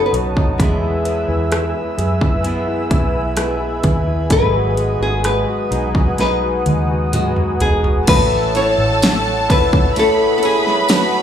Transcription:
0.00 0.56 B2 medium
0.00 0.55 F#3 medium
0.00 0.59 F#3 soft
0.00 0.60 C#4 soft
0.00 0.36 D#4 soft
0.00 0.60 D#4 medium
0.00 0.13 F#4 soft
0.00 0.63 B4 medium
0.00 0.56 C#5 medium
0.00 0.57 F#5 medium
0.00 0.58 A5 medium
0.00 0.57 D#6 medium
0.06 0.14 B4 medium
0.13 0.56 B1 medium
0.13 0.58 F#4 soft
0.13 closed hi-hat medium
0.36 0.59 D#4 soft
0.36 kick medium
0.58 1.25 E2 medium
0.58 2.44 E3 medium
0.58 4.26 G#3 soft
0.58 2.42 G#3 medium
0.58 2.44 B3 medium
0.58 8.04 B4 medium
0.58 4.27 E5 medium
0.58 8.04 G#5 medium
0.58 4.27 E6 medium
0.58 kick medium
0.58 closed hi-hat medium
0.62 2.45 E4 medium
0.62 2.46 G#4 medium
0.82 1.27 E4 soft
1.05 1.49 B4 soft
1.05 closed hi-hat medium
1.28 1.72 E2 medium
1.28 1.73 E4 soft
1.51 2.88 B4 soft
1.51 cross-stick medium
1.51 closed hi-hat medium
1.74 2.19 E4 soft
1.98 2.87 F#2 medium
1.98 3.79 G#4 soft
1.98 closed hi-hat medium
2.21 2.66 E4 soft
2.21 kick medium
2.43 3.35 G#3 medium
2.43 4.26 B3 soft
2.43 3.37 B3 medium
2.43 3.37 E4 medium
2.43 3.39 G#4 medium
2.43 closed hi-hat medium
2.67 3.13 E4 soft
2.90 3.80 B1 medium
2.90 3.36 B4 medium
2.90 kick medium
2.90 closed hi-hat medium
3.14 3.59 E4 soft
3.36 4.30 G#3 medium
3.36 4.31 B3 medium
3.36 4.31 E4 medium
3.36 4.32 G#4 medium
3.36 4.28 B4 soft
3.36 cross-stick medium
3.36 closed hi-hat medium
3.60 4.05 E4 soft
3.83 4.27 D#2 medium
3.83 4.29 G#4 soft
3.83 kick medium
3.83 closed hi-hat medium
4.07 4.29 E4 soft
4.29 4.97 G#1 medium
4.29 5.71 G#2 medium
4.29 5.71 D#3 medium
4.29 5.74 F#3 medium
4.29 4.76 G#3 medium
4.29 5.71 B3 medium
4.29 5.71 D#4 medium
4.29 5.69 G#4 medium
4.29 5.02 B4 loud
4.29 8.04 F#5 medium
4.29 8.04 D#6 medium
4.29 kick medium
4.29 closed hi-hat medium
4.53 4.98 F#4 soft
4.77 5.22 G#3 soft
4.77 closed hi-hat soft
4.99 5.44 G#1 medium
4.99 5.45 F#4 soft
4.99 5.25 G#4 medium
5.23 6.65 G#3 soft
5.23 6.15 B4 medium
5.23 cross-stick medium
5.23 closed hi-hat medium
5.46 5.92 F#4 soft
5.71 6.62 B1 medium
5.71 6.16 F#3 soft
5.71 6.17 B3 soft
5.71 6.16 D#4 soft
5.71 6.18 D#4 soft
5.71 6.18 G#4 soft
5.71 closed hi-hat medium
5.94 6.40 F#4 soft
5.94 kick medium
6.17 7.12 F#3 soft
6.17 7.12 B3 medium
6.17 7.59 D#4 medium
6.17 7.13 D#4 medium
6.17 7.14 G#4 medium
6.17 7.58 B4 medium
6.17 snare soft
6.17 closed hi-hat medium
6.42 6.88 F#4 soft
6.66 7.62 D#2 medium
6.66 7.12 G#3 soft
6.66 closed hi-hat medium
6.66 high tom soft
6.89 7.37 F#4 soft
7.12 8.07 F#3 soft
7.12 8.05 G#3 soft
7.12 8.08 B3 soft
7.12 8.08 D#4 soft
7.12 7.62 F#4 medium
7.12 8.09 G#4 soft
7.12 closed hi-hat medium
7.12 mid tom medium
7.36 7.82 F#4 soft
7.36 mid tom medium
7.60 8.05 E1 medium
7.60 8.06 D#4 soft
7.60 8.08 G#4 medium
7.60 closed hi-hat medium
7.60 floor tom medium
7.84 8.07 F#4 soft
7.84 floor tom medium
8.07 8.75 A1 loud
8.07 8.55 A3 medium
8.07 9.00 A3 medium
8.07 8.56 E4 medium
8.07 8.54 F#4 medium
8.07 9.92 A4 medium
8.07 8.56 B4 loud
8.07 11.22 C#5 medium
8.07 8.53 C#5 medium
8.07 11.22 F#5 medium
8.07 9.92 A5 medium
8.07 9.94 E6 loud
8.07 kick loud
8.07 crash medium
8.07 ride medium
8.54 9.47 E4 soft
8.54 9.96 E4 soft
8.54 9.98 F#4 soft
8.54 9.96 C#5 soft
8.54 9.51 C#5 medium
8.54 ride soft
8.78 11.22 A1 medium
9.02 9.95 A3 medium
9.02 snare loud
9.02 ride medium
9.02 tambourine loud
9.48 10.41 E4 medium
9.48 9.98 B4 medium
9.48 kick medium
9.48 ride medium
9.73 kick medium
9.95 10.88 A3 medium
9.95 10.87 A3 medium
9.95 10.88 E4 medium
9.95 10.90 F#4 medium
9.95 10.37 A4 loud
9.95 11.22 B4 medium
9.95 10.90 C#5 medium
9.95 11.22 B5 loud
9.95 11.22 D#6 medium
9.95 ride medium
10.38 10.44 A4 medium
10.43 11.22 E4 medium
10.43 10.91 G#4 medium
10.43 ride medium
10.67 snare soft
10.88 11.22 A3 medium
10.88 11.22 E4 medium
10.88 11.22 F#4 medium
10.88 11.22 C#5 medium
10.88 snare medium
10.88 ride medium
10.88 tambourine medium

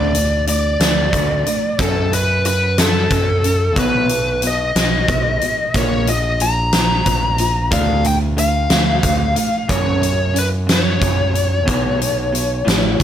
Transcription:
0.00 0.76 D2 medium
0.00 0.12 D3 medium
0.00 0.12 A3 medium
0.00 0.12 D4 medium
0.00 0.44 D5 medium
0.15 0.44 D3 medium
0.15 0.44 A3 medium
0.15 closed hi-hat medium
0.47 0.76 D3 medium
0.47 0.77 A3 medium
0.47 1.83 D5 medium
0.47 closed hi-hat medium
0.80 1.10 D2 medium
0.80 1.10 D3 medium
0.80 1.10 A3 medium
0.80 snare loud
0.80 closed hi-hat medium
1.13 1.43 D2 medium
1.13 1.43 D3 medium
1.13 1.43 A3 medium
1.13 kick medium
1.13 closed hi-hat medium
1.46 1.75 D3 medium
1.46 1.76 A3 medium
1.46 closed hi-hat medium
1.78 2.09 F#2 medium
1.78 3.07 F#2 medium
1.78 2.10 C#3 medium
1.78 2.10 F#3 medium
1.78 2.14 A4 medium
1.78 kick loud
1.78 closed hi-hat medium
2.12 2.41 F#2 medium
2.12 2.41 C#3 medium
2.12 2.44 B4 medium
2.12 closed hi-hat medium
2.45 2.74 F#2 medium
2.45 2.74 C#3 medium
2.45 2.76 B4 medium
2.45 closed hi-hat medium
2.78 3.08 F#2 medium
2.78 3.08 C#3 medium
2.78 3.79 A4 medium
2.78 snare medium
2.78 closed hi-hat medium
3.11 3.77 F#2 medium
3.11 3.40 F#2 medium
3.11 3.41 C#3 medium
3.11 kick medium
3.11 closed hi-hat medium
3.44 3.73 F#2 medium
3.44 3.74 C#3 medium
3.44 closed hi-hat medium
3.76 4.71 B1 medium
3.76 4.07 B2 medium
3.76 4.08 F#3 medium
3.76 4.08 B3 medium
3.76 4.45 B4 medium
3.76 kick loud
3.76 closed hi-hat medium
4.09 4.39 B2 medium
4.09 4.39 F#3 medium
4.09 closed hi-hat medium
4.42 4.72 B2 medium
4.42 4.72 F#3 medium
4.42 closed hi-hat medium
4.47 5.77 D#5 medium
4.75 5.06 B1 medium
4.75 5.05 B2 medium
4.75 5.05 F#3 medium
4.75 snare medium
4.75 closed hi-hat medium
5.08 5.39 B1 medium
5.08 5.38 B2 medium
5.08 5.38 F#3 medium
5.08 kick medium
5.08 closed hi-hat medium
5.41 5.71 B2 medium
5.41 5.71 F#3 medium
5.41 closed hi-hat soft
5.74 7.02 A#1 medium
5.74 6.05 A#2 medium
5.74 6.05 F3 medium
5.74 6.06 A#3 medium
5.74 6.09 C#5 medium
5.74 kick medium
5.74 closed hi-hat medium
6.07 6.37 A#2 medium
6.07 6.37 F3 medium
6.07 6.42 D#5 medium
6.07 closed hi-hat medium
6.40 6.70 A#2 medium
6.40 6.70 F3 medium
6.40 7.76 A#5 medium
6.40 closed hi-hat medium
6.72 7.03 A#2 medium
6.72 7.03 F3 medium
6.72 snare loud
6.72 closed hi-hat medium
7.06 7.72 A#1 medium
7.06 7.36 A#2 medium
7.06 7.36 F3 medium
7.06 kick medium
7.06 closed hi-hat medium
7.38 7.69 A#2 medium
7.38 7.69 F3 medium
7.38 closed hi-hat medium
7.71 8.67 D2 medium
7.71 8.02 D3 medium
7.71 8.02 A3 medium
7.71 8.03 D4 medium
7.71 8.06 F5 loud
7.71 kick loud
7.71 closed hi-hat medium
8.04 8.34 D3 medium
8.04 8.34 A3 medium
8.04 8.15 G5 medium
8.04 closed hi-hat medium
8.37 8.67 D3 medium
8.37 8.67 A3 medium
8.37 9.74 F5 medium
8.37 closed hi-hat medium
8.70 9.02 D2 medium
8.70 9.00 D3 medium
8.70 9.00 A3 medium
8.70 snare loud
8.70 closed hi-hat medium
9.03 9.34 D2 medium
9.03 9.33 D3 medium
9.03 9.33 A3 medium
9.03 kick medium
9.03 closed hi-hat medium
9.36 9.66 D3 medium
9.36 9.66 A3 medium
9.36 closed hi-hat medium
9.68 10.00 F#2 medium
9.68 10.98 F#2 medium
9.68 10.00 C#3 medium
9.68 10.01 F#3 medium
9.68 10.38 C#5 loud
9.68 kick loud
9.68 closed hi-hat medium
10.01 10.31 F#2 medium
10.01 10.32 C#3 medium
10.01 closed hi-hat medium
10.34 10.64 F#2 medium
10.34 10.65 C#3 medium
10.34 closed hi-hat medium
10.38 10.47 B4 medium
10.67 10.97 F#2 medium
10.67 10.98 C#3 medium
10.67 snare loud
10.67 closed hi-hat medium
10.73 12.98 C#5 medium
11.00 11.30 F#2 medium
11.00 11.68 F#2 medium
11.00 11.30 C#3 medium
11.00 kick medium
11.00 closed hi-hat medium
11.34 11.64 F#2 medium
11.34 11.64 C#3 medium
11.34 closed hi-hat soft
11.66 12.63 B1 medium
11.66 11.98 B2 medium
11.66 11.98 F#3 medium
11.66 11.99 B3 medium
11.66 kick loud
11.66 closed hi-hat medium
11.99 12.30 B2 medium
11.99 12.30 F#3 medium
11.99 closed hi-hat medium
12.33 12.63 B2 medium
12.33 12.63 F#3 medium
12.33 closed hi-hat medium
12.65 12.98 A1 medium
12.65 12.97 A2 medium
12.65 12.97 E3 medium
12.65 12.97 G3 medium
12.65 snare loud
12.65 closed hi-hat medium
12.99 13.03 A2 medium
12.99 13.03 E3 medium
12.99 kick medium

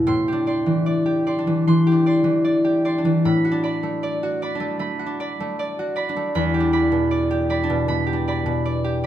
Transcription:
0.00 3.41 E4 soft
0.07 3.24 A2 soft
0.07 0.46 C6 medium
0.28 1.04 G4 soft
0.33 1.37 D4 soft
0.47 0.85 D5 soft
0.47 1.25 C6 soft
0.66 1.46 E3 soft
0.86 1.26 D5 soft
1.06 1.86 G4 soft
1.27 2.05 D5 soft
1.27 1.66 C6 soft
1.39 1.91 D4 soft
1.47 1.67 E3 soft
1.67 2.23 E3 soft
1.67 2.06 C6 soft
1.87 2.63 G4 soft
1.92 2.97 D4 soft
2.06 2.43 D5 soft
2.06 2.84 C6 soft
2.24 3.04 E3 soft
2.44 2.84 D5 soft
2.65 3.26 G4 soft
2.85 3.62 D5 soft
2.85 3.27 C6 soft
2.98 3.50 D4 soft
3.05 3.27 E3 soft
3.25 6.39 A2 soft
3.25 3.62 B5 medium
3.45 4.22 F#4 soft
3.51 4.54 D4 soft
3.63 4.02 D5 soft
3.63 4.41 B5 soft
3.83 4.59 A3 soft
4.03 4.41 D5 soft
4.23 4.98 F#4 soft
4.42 5.19 D5 soft
4.42 4.79 B5 soft
4.55 5.05 D4 soft
4.60 4.78 A3 soft
4.79 5.39 A3 soft
4.79 5.19 B5 soft
4.99 5.78 F#4 soft
5.06 6.08 D4 soft
5.20 5.58 D5 soft
5.20 5.95 B5 soft
5.40 6.15 A3 soft
5.59 5.95 D5 soft
5.79 6.38 F#4 soft
5.96 6.72 D5 soft
5.96 6.34 B5 soft
6.09 6.59 D4 soft
6.16 6.38 A3 soft
6.35 9.06 E2 soft
6.35 6.72 B5 medium
6.54 7.29 G4 soft
6.60 7.62 D4 soft
6.73 7.10 D5 soft
6.73 7.49 B5 soft
6.92 7.68 B2 soft
7.11 7.49 D5 soft
7.31 8.05 G4 soft
7.50 8.27 D5 soft
7.50 7.87 B5 soft
7.63 8.12 D4 soft
7.70 7.87 B2 soft
7.88 8.45 B2 soft
7.88 8.27 B5 soft
8.06 8.83 G4 soft
8.13 9.06 D4 soft
8.28 8.64 D5 soft
8.28 9.03 B5 soft
8.46 9.06 B2 soft
8.65 9.03 D5 soft
8.84 9.06 G4 soft

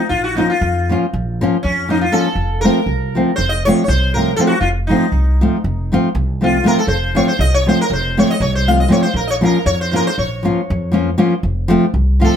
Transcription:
0.09 0.41 A#1 medium
0.09 0.23 F4 medium
0.24 0.36 F#4 medium
0.35 0.51 F3 medium
0.35 0.52 A#3 medium
0.35 0.53 C#4 medium
0.35 0.49 D#4 medium
0.35 0.53 F4 medium
0.50 0.97 F4 medium
0.61 0.92 F2 loud
0.89 1.04 F3 medium
0.89 1.04 A#3 medium
0.89 1.05 C#4 soft
0.89 1.05 F4 medium
1.13 1.44 A#1 medium
1.41 1.56 F3 medium
1.41 1.55 A#3 medium
1.41 1.56 C#4 medium
1.41 1.57 F4 medium
1.63 2.08 F2 medium
1.63 1.87 C#4 medium
1.88 2.04 F3 medium
1.88 2.04 A#3 medium
1.88 2.04 C#4 medium
1.88 2.01 D#4 medium
1.88 2.04 F4 medium
2.01 2.12 F4 medium
2.12 2.27 F3 medium
2.12 2.27 A#3 medium
2.12 2.27 C#4 medium
2.12 2.28 F4 medium
2.12 2.61 A4 medium
2.35 2.66 F1 medium
2.61 2.79 F3 medium
2.61 2.79 A3 medium
2.61 2.79 C4 medium
2.61 3.35 A#4 medium
2.65 2.79 F4 medium
2.86 3.17 C2 medium
3.15 3.30 F3 medium
3.15 3.30 A3 soft
3.15 3.31 C4 medium
3.15 3.31 F4 medium
3.36 3.69 F1 medium
3.36 3.50 C5 medium
3.49 3.65 D#5 medium
3.65 3.82 F3 medium
3.65 3.81 A3 medium
3.65 3.82 C4 medium
3.65 3.82 F4 medium
3.65 3.83 C#5 loud
3.84 3.90 C#5 medium
3.88 4.32 C2 loud
3.88 4.13 C5 medium
4.14 4.30 F3 medium
4.14 4.30 A3 soft
4.14 4.30 C4 soft
4.14 4.30 F4 medium
4.14 4.36 A#4 medium
4.36 4.53 F3 medium
4.36 4.53 A3 medium
4.36 4.53 C4 medium
4.36 4.41 A4 loud
4.41 4.54 F4 medium
4.47 4.60 F#4 medium
4.61 4.92 F1 medium
4.61 4.68 F4 medium
4.87 5.04 F3 medium
4.87 5.05 A3 medium
4.87 5.05 C4 medium
4.87 6.11 D#4 medium
4.91 5.05 F4 medium
5.12 5.43 C2 medium
5.41 5.56 F3 medium
5.41 5.56 A3 medium
5.41 5.56 C4 medium
5.41 5.57 F4 medium
5.64 5.95 F1 medium
5.92 6.07 F3 medium
5.92 6.07 A3 medium
5.92 6.07 C4 medium
5.92 6.08 F4 medium
6.15 6.58 C2 loud
6.41 6.56 F3 medium
6.41 6.56 A3 medium
6.41 6.56 C4 medium
6.41 6.57 F4 medium
6.41 6.67 F4 medium
6.64 6.79 F3 medium
6.64 6.79 A3 medium
6.64 6.80 C4 medium
6.64 6.80 F4 medium
6.64 6.77 A#4 medium
6.78 6.88 A4 medium
6.87 7.18 F1 medium
6.87 7.16 C5 medium
7.15 7.30 F3 medium
7.15 7.30 A3 medium
7.15 7.31 C4 medium
7.15 7.31 F4 medium
7.15 7.27 C#5 medium
7.28 7.40 C5 medium
7.39 7.70 C2 loud
7.39 7.54 D#5 loud
7.54 7.68 C#5 medium
7.66 7.82 F3 medium
7.66 7.82 A3 medium
7.66 7.82 C4 medium
7.66 7.83 F4 medium
7.66 7.80 C5 loud
7.81 7.92 A#4 loud
7.90 8.21 F1 loud
7.90 8.19 C5 medium
8.17 8.33 F3 medium
8.17 8.33 A3 medium
8.17 8.33 C4 medium
8.17 8.33 F4 medium
8.17 8.31 C#5 medium
8.31 8.43 D#5 medium
8.40 8.84 C2 loud
8.40 8.55 C#5 medium
8.55 8.69 C5 medium
8.67 8.82 F3 medium
8.67 8.82 A3 soft
8.67 8.83 C4 medium
8.67 8.83 F4 medium
8.67 8.80 F5 loud
8.80 8.92 D#5 medium
8.88 9.04 F3 medium
8.88 9.05 A3 medium
8.88 9.05 C4 medium
8.88 9.06 F4 medium
8.88 9.02 C#5 loud
9.03 9.15 C5 loud
9.14 9.45 A#1 medium
9.14 9.26 A#4 medium
9.27 9.35 C#5 loud
9.27 9.30 D#5 medium
9.41 9.57 F3 medium
9.41 9.57 A#3 medium
9.41 9.57 C#4 medium
9.41 9.58 F4 medium
9.41 9.66 A#4 medium
9.66 9.97 F2 loud
9.66 9.80 C#5 loud
9.81 9.90 C5 medium
9.91 10.08 F3 medium
9.91 10.08 A#3 medium
9.91 10.09 C#4 medium
9.91 10.09 F4 medium
9.91 9.94 C5 medium
9.96 10.06 A#4 loud
10.07 10.18 C5 loud
10.18 10.49 A#1 medium
10.18 11.38 C#5 medium
10.43 10.59 F3 medium
10.43 10.60 A#3 medium
10.43 10.60 C#4 medium
10.43 10.60 F4 medium
10.70 11.13 F2 loud
10.92 11.08 F3 medium
10.92 11.09 A#3 medium
10.92 11.09 C#4 medium
10.92 11.09 F4 medium
11.18 11.33 F3 medium
11.18 11.33 A#3 medium
11.18 11.33 C#4 medium
11.18 11.33 F4 medium
11.43 11.74 F1 medium
11.68 11.84 F3 loud
11.68 11.85 A3 medium
11.68 11.85 C4 medium
11.68 11.85 F4 loud
11.94 12.25 C2 medium
12.20 12.35 F3 medium
12.20 12.36 A3 medium
12.20 12.36 C4 medium
12.20 12.36 F4 medium
12.24 12.35 A4 medium

